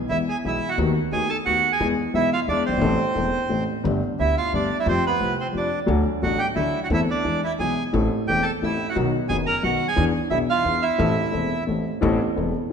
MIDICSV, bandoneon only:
0, 0, Header, 1, 2, 480
1, 0, Start_track
1, 0, Key_signature, 0, "minor"
1, 0, Tempo, 340716
1, 1102, Time_signature, 3, 2, 24, 8
1, 17923, End_track
2, 0, Start_track
2, 0, Title_t, "Bandoneon"
2, 0, Program_c, 0, 23
2, 127, Note_on_c, 0, 64, 56
2, 157, Note_on_c, 0, 76, 79
2, 239, Note_off_c, 0, 64, 0
2, 262, Note_off_c, 0, 76, 0
2, 402, Note_on_c, 0, 68, 65
2, 431, Note_on_c, 0, 80, 76
2, 506, Note_off_c, 0, 68, 0
2, 528, Note_off_c, 0, 80, 0
2, 644, Note_on_c, 0, 64, 60
2, 677, Note_on_c, 0, 76, 83
2, 967, Note_on_c, 0, 66, 60
2, 969, Note_off_c, 0, 64, 0
2, 986, Note_off_c, 0, 76, 0
2, 1004, Note_on_c, 0, 78, 83
2, 1079, Note_off_c, 0, 66, 0
2, 1107, Note_off_c, 0, 78, 0
2, 1580, Note_on_c, 0, 68, 74
2, 1595, Note_on_c, 0, 80, 86
2, 1801, Note_off_c, 0, 68, 0
2, 1826, Note_on_c, 0, 81, 91
2, 1827, Note_on_c, 0, 69, 67
2, 1831, Note_off_c, 0, 80, 0
2, 1931, Note_off_c, 0, 81, 0
2, 1932, Note_off_c, 0, 69, 0
2, 2050, Note_on_c, 0, 66, 61
2, 2052, Note_on_c, 0, 78, 92
2, 2383, Note_off_c, 0, 66, 0
2, 2420, Note_off_c, 0, 78, 0
2, 2427, Note_on_c, 0, 68, 67
2, 2431, Note_on_c, 0, 80, 77
2, 2640, Note_off_c, 0, 68, 0
2, 2642, Note_off_c, 0, 80, 0
2, 3028, Note_on_c, 0, 76, 89
2, 3035, Note_on_c, 0, 64, 64
2, 3238, Note_off_c, 0, 76, 0
2, 3241, Note_off_c, 0, 64, 0
2, 3282, Note_on_c, 0, 77, 89
2, 3284, Note_on_c, 0, 65, 68
2, 3380, Note_off_c, 0, 77, 0
2, 3382, Note_off_c, 0, 65, 0
2, 3504, Note_on_c, 0, 74, 86
2, 3513, Note_on_c, 0, 62, 63
2, 3714, Note_off_c, 0, 74, 0
2, 3719, Note_off_c, 0, 62, 0
2, 3745, Note_on_c, 0, 72, 73
2, 3750, Note_on_c, 0, 60, 56
2, 5124, Note_off_c, 0, 72, 0
2, 5127, Note_off_c, 0, 60, 0
2, 5906, Note_on_c, 0, 64, 75
2, 5929, Note_on_c, 0, 76, 87
2, 6125, Note_off_c, 0, 64, 0
2, 6138, Note_off_c, 0, 76, 0
2, 6165, Note_on_c, 0, 77, 93
2, 6168, Note_on_c, 0, 65, 72
2, 6375, Note_off_c, 0, 77, 0
2, 6377, Note_off_c, 0, 65, 0
2, 6399, Note_on_c, 0, 62, 63
2, 6416, Note_on_c, 0, 74, 77
2, 6723, Note_off_c, 0, 62, 0
2, 6732, Note_off_c, 0, 74, 0
2, 6757, Note_on_c, 0, 64, 63
2, 6760, Note_on_c, 0, 76, 79
2, 6859, Note_off_c, 0, 64, 0
2, 6860, Note_off_c, 0, 76, 0
2, 6880, Note_on_c, 0, 72, 90
2, 6904, Note_on_c, 0, 60, 67
2, 7104, Note_off_c, 0, 60, 0
2, 7114, Note_off_c, 0, 72, 0
2, 7135, Note_on_c, 0, 71, 79
2, 7144, Note_on_c, 0, 59, 55
2, 7558, Note_off_c, 0, 71, 0
2, 7563, Note_off_c, 0, 59, 0
2, 7614, Note_on_c, 0, 72, 75
2, 7618, Note_on_c, 0, 60, 54
2, 7711, Note_off_c, 0, 72, 0
2, 7713, Note_off_c, 0, 60, 0
2, 7848, Note_on_c, 0, 74, 70
2, 7859, Note_on_c, 0, 62, 59
2, 8160, Note_off_c, 0, 74, 0
2, 8166, Note_off_c, 0, 62, 0
2, 8774, Note_on_c, 0, 66, 66
2, 8789, Note_on_c, 0, 78, 79
2, 8990, Note_off_c, 0, 66, 0
2, 8991, Note_on_c, 0, 67, 64
2, 9015, Note_on_c, 0, 79, 87
2, 9021, Note_off_c, 0, 78, 0
2, 9100, Note_off_c, 0, 67, 0
2, 9119, Note_off_c, 0, 79, 0
2, 9227, Note_on_c, 0, 64, 63
2, 9246, Note_on_c, 0, 76, 75
2, 9568, Note_off_c, 0, 64, 0
2, 9578, Note_off_c, 0, 76, 0
2, 9630, Note_on_c, 0, 66, 61
2, 9659, Note_on_c, 0, 78, 80
2, 9677, Note_off_c, 0, 66, 0
2, 9700, Note_off_c, 0, 78, 0
2, 9760, Note_on_c, 0, 64, 60
2, 9781, Note_on_c, 0, 76, 83
2, 9860, Note_off_c, 0, 64, 0
2, 9876, Note_off_c, 0, 76, 0
2, 10003, Note_on_c, 0, 62, 62
2, 10017, Note_on_c, 0, 74, 82
2, 10432, Note_off_c, 0, 62, 0
2, 10440, Note_off_c, 0, 74, 0
2, 10479, Note_on_c, 0, 64, 66
2, 10510, Note_on_c, 0, 76, 84
2, 10581, Note_off_c, 0, 64, 0
2, 10604, Note_off_c, 0, 76, 0
2, 10692, Note_on_c, 0, 68, 64
2, 10711, Note_on_c, 0, 80, 81
2, 11030, Note_off_c, 0, 68, 0
2, 11040, Note_off_c, 0, 80, 0
2, 11659, Note_on_c, 0, 79, 86
2, 11665, Note_on_c, 0, 67, 62
2, 11872, Note_on_c, 0, 81, 82
2, 11886, Note_off_c, 0, 67, 0
2, 11887, Note_on_c, 0, 69, 65
2, 11907, Note_off_c, 0, 79, 0
2, 11987, Note_off_c, 0, 81, 0
2, 11998, Note_off_c, 0, 69, 0
2, 12168, Note_on_c, 0, 76, 78
2, 12181, Note_on_c, 0, 64, 61
2, 12498, Note_off_c, 0, 64, 0
2, 12526, Note_off_c, 0, 76, 0
2, 12530, Note_on_c, 0, 78, 78
2, 12541, Note_on_c, 0, 66, 54
2, 12632, Note_off_c, 0, 78, 0
2, 12640, Note_off_c, 0, 66, 0
2, 13083, Note_on_c, 0, 68, 68
2, 13087, Note_on_c, 0, 80, 90
2, 13195, Note_off_c, 0, 68, 0
2, 13197, Note_off_c, 0, 80, 0
2, 13332, Note_on_c, 0, 82, 95
2, 13345, Note_on_c, 0, 70, 73
2, 13557, Note_off_c, 0, 82, 0
2, 13563, Note_off_c, 0, 70, 0
2, 13569, Note_on_c, 0, 78, 78
2, 13579, Note_on_c, 0, 66, 62
2, 13904, Note_off_c, 0, 78, 0
2, 13910, Note_off_c, 0, 66, 0
2, 13920, Note_on_c, 0, 80, 90
2, 13931, Note_on_c, 0, 68, 62
2, 14148, Note_off_c, 0, 80, 0
2, 14153, Note_off_c, 0, 68, 0
2, 14515, Note_on_c, 0, 76, 80
2, 14525, Note_on_c, 0, 64, 68
2, 14626, Note_off_c, 0, 76, 0
2, 14633, Note_off_c, 0, 64, 0
2, 14788, Note_on_c, 0, 77, 88
2, 14794, Note_on_c, 0, 65, 61
2, 15226, Note_off_c, 0, 65, 0
2, 15243, Note_on_c, 0, 76, 72
2, 15247, Note_on_c, 0, 64, 62
2, 15269, Note_off_c, 0, 77, 0
2, 16395, Note_off_c, 0, 76, 0
2, 16397, Note_off_c, 0, 64, 0
2, 17923, End_track
0, 0, End_of_file